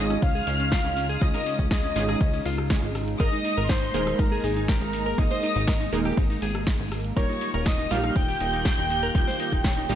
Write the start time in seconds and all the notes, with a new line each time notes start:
Already playing: G#1 C#3 G#3 C#4 D#4 F4 G#4 D#5 D#6
0.10 C#4, cross-stick, closed hi-hat
0.22 C#2 C#4 F5 F6, kick, closed hi-hat, ride
0.35 G#4, closed hi-hat
0.47 C#2 C#4, open hi-hat
0.60 C#4, closed hi-hat
0.72 F4, kick, snare, closed hi-hat, ride
0.85 C#2 C#4, closed hi-hat
0.97 C#4, open hi-hat
1.09 G#4, closed hi-hat
1.21 C#2 G#3 C#4 D#4 F4 G#4 D#5 D#6, kick, closed hi-hat, ride
1.34 A#4, snare, closed hi-hat
1.46 C#4, open hi-hat
1.59 C#2 C#4, kick, closed hi-hat
1.71 G#4 D#5 D#6, kick, snare, closed hi-hat, ride
1.84 C#4, closed hi-hat
1.96 G#1 G#3 C#4 D#4 F4 G#4, open hi-hat
2.09 G#4, cross-stick, closed hi-hat
2.21 C#2 C#4, kick, closed hi-hat, ride
2.33 C#4, closed hi-hat
2.45 C#2 F4, open hi-hat
2.58 cross-stick, closed hi-hat
2.70 G#3 C#4 D#4 F4 G#4, kick, snare, closed hi-hat, ride
2.83 G#1, closed hi-hat
2.95 cross-stick, open hi-hat
3.08 closed hi-hat
3.20 G#1 G#3 A#3 D#4 G#4 A#4 D#5 D#6, kick, closed hi-hat, ride
3.33 D#4, closed hi-hat
3.45 D#4, open hi-hat
3.57 G#1 A#4, closed hi-hat
3.69 D#4 C5 C6, kick, snare, closed hi-hat, ride
3.82 D#4, closed hi-hat
3.94 D#1 G#3 A#3 D#4 G#4 A#4, open hi-hat
4.07 D#4, cross-stick, closed hi-hat
4.19 G#1 D#4 A#4 A#5, kick, closed hi-hat, ride
4.32 G#4, closed hi-hat
4.44 G#1 D#4 G#4 G#5, open hi-hat
4.57 D#4, closed hi-hat
4.68 G4 A#4 A#5, kick, snare, closed hi-hat, ride
4.81 G#1 D#4, closed hi-hat
4.93 D#4, open hi-hat
5.06 A#4, closed hi-hat
5.18 G#1 G#3 A#3 D#4 G#4 A#4 D#5 D#6, kick, closed hi-hat, ride
5.31 C5, snare, closed hi-hat
5.43 D#4, open hi-hat
5.56 G#1 D#4, closed hi-hat
5.68 A#4, kick, snare, closed hi-hat, ride
5.80 D#4, closed hi-hat
5.93 D#1 G#3 A#3 D#4 G#4 A#4, open hi-hat
6.05 G4, cross-stick, closed hi-hat
6.17 G#1 D#4, kick, closed hi-hat, ride
6.30 D#4, closed hi-hat
6.42 G#1 G#4, open hi-hat
6.55 cross-stick, closed hi-hat
6.67 kick, snare, closed hi-hat, ride
6.80 G#1, closed hi-hat
6.92 cross-stick, open hi-hat
7.04 closed hi-hat
7.17 D#1 D#3 G3 A#3 D#4 F4 G4 A#4 C#5 C#6, kick, closed hi-hat, ride
7.29 D#4, closed hi-hat
7.41 D#4, open hi-hat
7.54 D#1 A#4, closed hi-hat
7.66 D#4 D#5 D#6, kick, snare, closed hi-hat, ride
7.79 D#4, closed hi-hat
7.91 A#1 G3 A#3 D#4 F4 G4 F5 F6, open hi-hat
8.04 D#4, cross-stick, closed hi-hat
8.16 D#1 D#4 G5 G6, kick, closed hi-hat, ride
8.28 G4, closed hi-hat
8.40 D#1 D#4, open hi-hat
8.53 D#4, closed hi-hat
8.65 G4, kick, snare, closed hi-hat, ride
8.78 D#1 D#4, closed hi-hat
8.90 D#4, open hi-hat
9.03 A#4, closed hi-hat
9.15 D#1 G3 A#3 D#4 F4 G4, kick, closed hi-hat, ride
9.27 C5, snare, closed hi-hat
9.40 D#4, open hi-hat
9.52 D#1 D#4, kick, closed hi-hat
9.64 C#5, kick, snare, closed hi-hat, ride
9.77 D#4, closed hi-hat
9.89 A#1 G3 A#3 D#4 F4 G4, open hi-hat